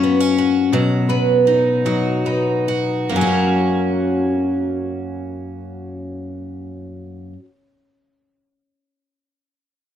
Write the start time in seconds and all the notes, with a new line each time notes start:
Already playing: F#2 F#3 A#3 C#4 F#4
0.04 B3
0.20 C#4
0.38 F#4
0.73 B2 F#3
1.09 B3 B4
1.47 D#4
1.85 F#3 D#4 F#4
2.26 D#4 B4
2.68 F#4
3.09 F#2 A#3
3.16 F#3 C#4
3.21 C#4 F#4
3.27 F#4
3.32 A#4